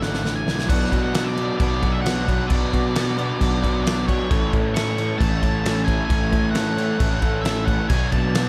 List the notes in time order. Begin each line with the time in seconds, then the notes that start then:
Already playing: D3 A3 D4 E4 A4 D5 E5 D6
0.01 G#1 E3 A3 D4 F#5, snare
0.14 snare
0.23 A1 D3 E3 A3 D4, snare
0.35 G#5
0.46 B1 E3 A3 D4, snare
0.59 snare
0.69 B1 B2 F#3 B3 D4 F#4 D5 F#5 B5 D6, kick, crash
0.92 B2 F#3 B3 D4, kick, crash
1.04 F#5
1.14 B2 F#3 B3 D4 F#4 F#5, snare, crash
1.24 D5
1.37 B2 F#3 B3 D4, crash
1.58 B1 B2 F#3 B3 D4 F#4 D5, kick, crash
1.63 F#4
1.81 B2 F#3 B3 D4 F#4, kick, crash
1.92 E5
2.00 F#5
2.06 B2 F#3 B3 D4 F#4, snare, crash
2.13 F#5
2.26 B2 F#3 B3 D4 F#4, kick, crash
2.47 B1 B2 F#3 D5, kick, crash
2.51 B3 D4 F#4
2.73 B2 F#3 B3 D4, kick, crash
2.95 B2 F#3 B3 D4 F#4, snare, crash
3.18 B2 F#3 B3 D4, crash
3.40 B1 B2 F#3 B3 D4 F#4, kick, crash
3.61 B2 F#3 B3 F#4, kick, crash
3.65 B3 D4
3.84 B2 F#3 B3 D4 F#4 D5, snare, crash
4.06 B2 F#3 B3 D4 F#4 C#5, kick, crash
4.30 A1 A2 E3 A3 C#4 E4 A4 E5 C#6, kick, crash
4.52 A2 E3 A3 C#4 E4, kick, crash
4.74 A2 E3 A3 C#4 E4 A4 C#6, snare, crash
4.98 A2 E3 A3 C#4 E4, crash
5.18 A1 A2 E3 A3 C#4 A5, kick, crash
5.22 E4 A4
5.41 A2 E3 A3 C#4 A4, kick, crash
5.46 E4
5.65 A2 E3 A3 C#4 E4 A4, snare, crash
5.85 A2 E3 A4 G#5, kick, crash
5.89 A3 C#4 E4
6.05 G#5
6.09 A1 A2 E3 A3 C#4 E4 A4, kick, crash
6.32 A2 E3 A3 C#4 E4, kick, crash
6.51 F#5
6.55 A2 E3 A3 C#4 E4 A4, snare, crash
6.78 A2 E3 A3 C#4 E4, crash
7.00 A1 A2 E3 A3 C#4 E4 A4, kick, crash
7.22 A2 E3 A3 C#4 E4 A4, kick, crash
7.42 A2 E3 A3 E5, crash
7.46 C#4 E4 A4, snare
7.65 A2 E3 A3 A4 F#5, kick, crash
7.69 C#4 E4
7.89 B1 B2 F#3 B3 D4 F#4 B4 D5 F#5 G#5 D6, kick, crash
8.12 B2 F#3 B3 D4 F#4 A5, kick, crash
8.34 B2 F#3 B3 D4 F#4, snare, crash